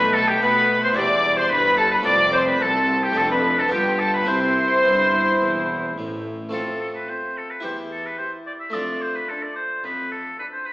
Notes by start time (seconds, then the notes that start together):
Already playing: B1 B2 A3 D#4 F#4 B4 B5
0.13 A4 A5
0.28 G4 G5
0.41 B2 A3 B3 B4 B5
0.83 C5 C6
0.93 E1 E2 G3 E4 G4 D5
0.97 D6
1.37 C5 C6
1.50 G1 G2 G3 B4 B5
1.77 A4 A5
1.91 B4 B5
2.02 F2 A3 C4 F4 D5
2.06 F1 F2 C4 D5 D6
2.33 C5 C6
2.47 B4 B5
2.60 C2 C4 A4 A5
3.03 G4 G5
3.12 A3 D4 F4
3.16 F1 F2 D4 A4 A5
3.30 B4 B5
3.58 A4 A5
3.68 G1 B3 D4 F4 G4
3.72 G2 F4 G4 G5
3.99 A4 A5
4.14 B4 B5
4.25 C2 C3 C4 E4 C5
4.29 C5 C6
4.84 G1 G2
5.41 E1 E2
5.96 A1 A2
6.49 F2 A3 C4 F4
6.53 F2 A4
6.81 A4
6.95 B4
7.09 C4 F4 C5 C6
7.37 A4
7.50 B4
7.60 E2 E4 G4
7.64 C5
7.92 A4
8.06 B4
8.18 E4 G4 C5 C6
8.47 D5
8.60 E5
8.70 F2 A3 D4 F4 D5
8.74 F2
9.02 C5
9.15 B4
9.29 D4 A4 A5
9.43 D5
9.55 C5
9.83 F2 B4
10.12 A4
10.39 D4 A4 B4 A5
10.52 C5
10.66 B4